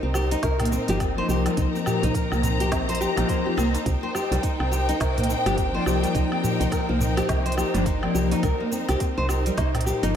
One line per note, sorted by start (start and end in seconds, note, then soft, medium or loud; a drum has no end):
0.00 0.36 C2 medium
0.00 0.14 C4 medium
0.00 10.16 D#4 medium
0.00 3.82 A#4 medium
0.00 10.16 C5 medium
0.14 0.31 G4 medium
0.14 darbuka ka medium
0.14 low woodblock medium
0.14 shaker medium
0.31 0.43 D#4 loud
0.31 open hi-hat soft
0.31 shaker soft
0.43 0.78 C2 medium
0.43 0.59 A#4 medium
0.43 kick loud
0.43 snare medium
0.43 open hi-hat medium
0.43 shaker soft
0.60 0.71 A#3 medium
0.60 open hi-hat soft
0.60 darbuka dum medium
0.60 low woodblock medium
0.65 open hi-hat medium
0.72 0.87 C4 medium
0.72 darbuka ka medium
0.72 shaker medium
0.88 1.21 G1 medium
0.88 0.96 F3 medium
0.88 0.97 A#3 medium
0.88 0.97 D#4 medium
0.88 1.00 G4 loud
0.88 open hi-hat soft
0.88 shaker soft
1.00 1.17 C4 medium
1.00 kick loud
1.00 open hi-hat medium
1.00 low woodblock medium
1.00 shaker soft
1.16 3.12 F3 medium
1.16 3.13 A#3 medium
1.16 3.14 D#4 loud
1.16 1.28 C5 loud
1.29 1.48 C2 medium
1.29 1.45 G4 medium
1.29 shaker medium
1.46 1.53 G3 medium
1.46 open hi-hat soft
1.46 darbuka ka medium
1.46 darbuka tek medium
1.46 low woodblock medium
1.46 shaker soft
1.57 1.68 C2 loud
1.57 1.73 D#4 medium
1.57 3.84 A#5 medium
1.57 kick loud
1.57 open hi-hat medium
1.57 shaker soft
1.75 1.86 C4 medium
1.75 shaker soft
1.86 2.02 G4 medium
1.86 darbuka dum medium
1.86 low woodblock medium
1.86 shaker medium
2.03 2.10 C2 medium
2.03 2.14 D#4 medium
2.03 open hi-hat soft
2.03 darbuka ka medium
2.03 darbuka tek medium
2.03 darbuka dum medium
2.03 shaker soft
2.15 2.31 A#4 medium
2.15 kick loud
2.15 open hi-hat medium
2.15 shaker soft
2.32 2.73 C2 medium
2.32 2.42 A#3 medium
2.32 low woodblock medium
2.32 shaker soft
2.42 2.59 C4 medium
2.42 open hi-hat soft
2.42 darbuka ka medium
2.42 darbuka tek medium
2.42 darbuka dum medium
2.42 shaker medium
2.60 2.71 G4 medium
2.60 open hi-hat soft
2.60 shaker soft
2.72 3.06 A#1 loud
2.72 2.88 C4 medium
2.72 kick loud
2.72 snare medium
2.72 open hi-hat medium
2.72 swell medium
2.72 low woodblock medium
2.72 shaker soft
2.89 2.99 C5 loud
2.89 open hi-hat soft
2.89 shaker soft
2.95 open hi-hat medium
3.01 3.16 G4 loud
3.01 shaker medium
3.16 3.24 A#1 medium
3.16 3.41 F3 medium
3.16 3.42 A#3 medium
3.16 3.42 D#4 loud
3.16 3.28 G4 medium
3.16 open hi-hat soft
3.16 darbuka ka soft
3.16 darbuka tek medium
3.16 low woodblock medium
3.16 shaker soft
3.29 3.45 C5 loud
3.29 kick loud
3.29 open hi-hat medium
3.29 shaker soft
3.45 3.54 F3 medium
3.45 3.54 A#3 medium
3.45 3.54 F4 medium
3.45 3.57 G4 medium
3.57 3.77 C2 medium
3.57 3.67 A#3 loud
3.57 low woodblock medium
3.57 shaker medium
3.74 3.85 D#4 medium
3.74 open hi-hat soft
3.74 darbuka tek medium
3.74 shaker soft
3.86 3.96 C2 loud
3.86 4.02 C4 medium
3.86 10.16 A#4 medium
3.86 8.39 G5 medium
3.86 kick medium
3.86 open hi-hat medium
3.86 shaker soft
4.03 4.13 C5 medium
4.15 4.30 G4 medium
4.15 low woodblock medium
4.15 shaker medium
4.31 4.38 C2 medium
4.31 4.38 G3 medium
4.31 open hi-hat soft
4.31 darbuka ka medium
4.31 shaker soft
4.43 4.58 D#4 loud
4.43 kick loud
4.43 open hi-hat medium
4.43 shaker soft
4.60 4.93 C2 medium
4.60 4.71 C4 medium
4.60 low woodblock medium
4.71 4.88 G4 medium
4.71 darbuka ka medium
4.71 shaker medium
4.89 5.00 D#4 loud
4.89 open hi-hat soft
4.89 shaker soft
5.00 5.35 C2 medium
5.00 5.16 A#4 medium
5.00 kick loud
5.00 snare medium
5.00 open hi-hat medium
5.00 low woodblock medium
5.00 shaker soft
5.17 5.28 A#3 medium
5.17 open hi-hat soft
5.17 darbuka dum medium
5.24 open hi-hat medium
5.29 5.44 C4 medium
5.29 darbuka ka medium
5.29 shaker medium
5.45 5.79 G1 loud
5.45 5.54 F3 medium
5.45 5.54 A#3 medium
5.45 5.54 D4 medium
5.45 5.57 G4 loud
5.45 open hi-hat soft
5.45 low woodblock medium
5.45 shaker soft
5.58 5.74 C4 medium
5.58 kick loud
5.58 open hi-hat medium
5.58 shaker soft
5.72 7.69 F3 medium
5.72 7.70 A#3 medium
5.72 5.85 C5 loud
5.76 7.71 D5 loud
5.86 6.05 C2 medium
5.86 6.01 G4 medium
5.86 low woodblock medium
5.86 shaker medium
6.03 6.10 G3 medium
6.03 open hi-hat soft
6.03 darbuka ka medium
6.03 darbuka tek medium
6.03 shaker soft
6.15 6.25 C2 loud
6.15 6.30 D#4 medium
6.15 kick loud
6.15 open hi-hat medium
6.15 shaker soft
6.32 6.43 C4 medium
6.32 low woodblock medium
6.43 6.59 G4 medium
6.43 darbuka dum medium
6.43 shaker medium
6.60 6.67 C2 medium
6.60 6.71 D#4 medium
6.60 open hi-hat soft
6.60 darbuka ka medium
6.60 shaker soft
6.72 6.88 A#4 medium
6.72 kick loud
6.72 open hi-hat medium
6.72 low woodblock medium
6.72 shaker soft
6.89 7.22 C2 medium
6.89 6.99 A#3 medium
7.00 7.16 C4 medium
7.00 darbuka ka medium
7.00 darbuka dum loud
7.00 shaker medium
7.17 7.28 G4 loud
7.17 open hi-hat soft
7.17 low woodblock medium
7.17 shaker soft
7.29 7.64 C2 medium
7.29 7.45 C4 medium
7.29 kick loud
7.29 snare medium
7.29 open hi-hat medium
7.29 shaker soft
7.46 7.56 C5 loud
7.46 open hi-hat soft
7.52 open hi-hat medium
7.57 7.73 G4 medium
7.57 low woodblock medium
7.57 shaker medium
7.74 8.07 G1 loud
7.74 7.82 F3 medium
7.74 7.81 G3 medium
7.74 7.83 A#3 medium
7.74 7.83 D4 loud
7.74 open hi-hat soft
7.74 darbuka tek medium
7.74 shaker soft
7.86 8.01 D#4 loud
7.86 kick loud
7.86 open hi-hat medium
7.86 shaker soft
8.02 8.41 F3 medium
8.02 8.42 A#3 medium
8.02 8.14 C4 medium
8.02 8.42 D5 loud
8.02 low woodblock medium
8.14 8.34 C2 medium
8.14 8.31 G4 medium
8.14 shaker medium
8.32 8.43 D#4 loud
8.32 open hi-hat soft
8.32 darbuka tek medium
8.32 shaker soft
8.43 8.53 C2 loud
8.43 8.59 A#4 medium
8.43 kick loud
8.43 open hi-hat medium
8.43 low woodblock medium
8.43 shaker soft
8.60 8.71 A#3 medium
8.72 8.87 C4 medium
8.72 shaker medium
8.89 8.96 C2 medium
8.89 9.00 G4 medium
8.89 open hi-hat soft
8.89 darbuka ka medium
8.89 low woodblock medium
8.89 shaker soft
9.00 9.17 C4 medium
9.00 kick loud
9.00 open hi-hat medium
9.00 shaker soft
9.18 9.50 C2 medium
9.18 9.28 C5 loud
9.29 9.44 G4 medium
9.29 darbuka ka medium
9.29 low woodblock medium
9.29 shaker medium
9.46 9.53 G3 medium
9.46 open hi-hat soft
9.46 shaker soft
9.57 9.92 C2 loud
9.57 9.73 D#4 loud
9.57 kick loud
9.57 snare medium
9.57 open hi-hat medium
9.57 shaker soft
9.74 9.86 C4 medium
9.74 open hi-hat soft
9.74 darbuka dum medium
9.74 low woodblock medium
9.81 open hi-hat medium
9.85 10.02 G4 medium
9.85 darbuka ka medium
9.85 shaker medium
10.02 10.16 G1 medium
10.02 10.11 F3 medium
10.02 10.11 A#3 medium
10.02 10.14 D#4 loud
10.02 10.12 D#4 medium
10.02 open hi-hat soft
10.02 shaker soft